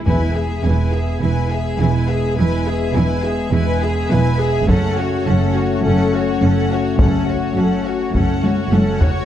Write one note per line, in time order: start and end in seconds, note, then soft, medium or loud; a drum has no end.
0.06 0.55 E1 soft
0.06 0.89 E2 soft
0.06 0.55 E2 soft
0.06 4.64 G#3 soft
0.06 4.64 B3 soft
0.06 0.33 E4 soft
0.06 0.34 B4 soft
0.06 0.33 G#5 soft
0.06 taiko soft
0.35 0.64 G#4 soft
0.35 0.64 E5 soft
0.63 1.13 E1 soft
0.63 1.13 E2 medium
0.63 0.93 E4 soft
0.63 0.94 B4 soft
0.63 0.93 G#5 soft
0.92 1.21 G#4 soft
0.92 1.22 G#4 soft
0.92 1.22 E5 soft
1.20 1.71 E1 soft
1.20 1.71 E2 soft
1.20 1.49 E4 soft
1.20 1.49 B4 soft
1.20 1.48 G#5 soft
1.50 1.80 G#4 soft
1.50 1.80 E5 soft
1.79 2.29 E1 medium
1.79 2.28 E2 soft
1.79 2.08 E4 soft
1.79 2.09 B4 soft
1.79 2.08 G#5 soft
2.07 2.38 G#4 soft
2.07 2.37 E5 soft
2.37 2.86 E1 medium
2.37 2.86 E2 medium
2.37 2.64 E4 soft
2.37 2.65 B4 soft
2.37 2.64 G#5 soft
2.66 2.95 G#4 soft
2.66 2.96 G#4 soft
2.66 2.95 E5 soft
2.94 3.43 E1 medium
2.94 3.44 E2 medium
2.94 3.24 E4 soft
2.94 3.24 B4 soft
2.94 3.24 G#5 soft
3.24 3.53 G#4 soft
3.24 3.53 E5 soft
3.52 4.01 E1 medium
3.52 4.02 E2 medium
3.52 3.79 E4 soft
3.52 3.80 B4 medium
3.52 3.80 G#5 soft
3.82 4.11 G#4 soft
3.82 4.11 E5 soft
4.11 4.59 E1 medium
4.11 4.59 E2 medium
4.11 4.40 E4 soft
4.11 4.40 B4 soft
4.11 4.40 G#5 soft
4.40 4.68 G#4 medium
4.40 4.69 G#4 soft
4.40 4.69 E5 soft
4.68 5.17 F#1 medium
4.68 5.17 F#2 medium
4.68 8.98 A3 medium
4.68 4.95 C#4 medium
4.68 8.98 C#4 medium
4.68 4.95 A4 medium
4.68 4.96 F#5 soft
4.68 taiko medium
4.97 5.26 F#4 soft
4.97 5.27 C#5 soft
5.26 5.75 F#1 medium
5.26 5.74 F#2 medium
5.26 5.55 C#4 soft
5.26 5.55 A4 soft
5.26 5.55 F#5 soft
5.55 5.84 F#4 soft
5.55 5.84 C#5 soft
5.83 6.32 F#1 medium
5.83 6.32 F#2 medium
5.83 6.10 C#4 soft
5.83 6.11 A4 soft
5.83 6.11 F#5 soft
6.12 6.41 F#4 soft
6.12 6.42 F#4 soft
6.12 6.42 C#5 soft
6.41 6.90 F#1 medium
6.41 6.90 F#2 medium
6.41 6.70 C#4 soft
6.41 6.71 A4 soft
6.41 6.70 F#5 soft
6.70 6.99 F#4 soft
6.70 7.00 F#4 soft
6.70 6.99 C#5 soft
6.99 7.47 F#1 soft
6.99 7.47 F#2 soft
6.99 7.26 C#4 soft
6.99 7.26 A4 soft
6.99 7.26 F#5 soft
6.99 taiko medium
7.28 7.57 F#4 soft
7.28 7.58 F#4 soft
7.28 7.57 C#5 soft
7.57 8.05 F#1 soft
7.57 8.05 F#2 soft
7.57 7.86 C#4 soft
7.57 7.86 A4 soft
7.57 7.86 F#5 soft
7.85 8.14 F#4 soft
7.85 8.15 F#4 soft
7.85 8.14 C#5 soft
8.14 8.63 F#1 medium
8.14 8.63 F#2 soft
8.14 8.41 C#4 soft
8.14 8.41 A4 soft
8.14 8.41 F#5 soft
8.14 taiko medium
8.43 8.72 F#4 soft
8.43 8.73 F#4 soft
8.43 8.72 C#5 soft
8.43 taiko high medium
8.72 9.20 F#1 soft
8.72 9.21 F#2 medium
8.72 9.01 C#4 soft
8.72 9.01 A4 soft
8.72 9.01 F#5 soft
8.72 taiko high medium
9.00 9.25 F#4 soft
9.00 9.25 C#5 soft
9.00 taiko low medium